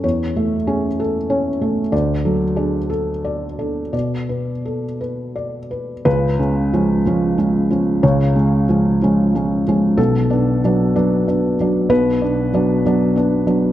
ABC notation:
X:1
M:6/8
L:1/8
Q:3/8=62
K:C#phr
V:1 name="Felt piano"
c A G A c A | d A G A d A | d B A B d B | B6 |
c6 | A6 | B6 |]
V:2 name="Felt piano"
E,, A, C2 C A, | D,, F, D2 z D | B,, B,2 z3 | [C,,C,] [G,C] [^E,G,C] [E,G,C] [G,C] [E,G,C] |
[C,,C,] [G,C] [^E,G,C] [E,G,C] [G,C] [E,G,C] | [B,,,B,,] [B,D] [F,B,D] [F,B,D] [B,D] [F,B,D] | [B,,,B,,] [B,D] [F,B,D] [F,B,D] [B,D] [F,B,D] |]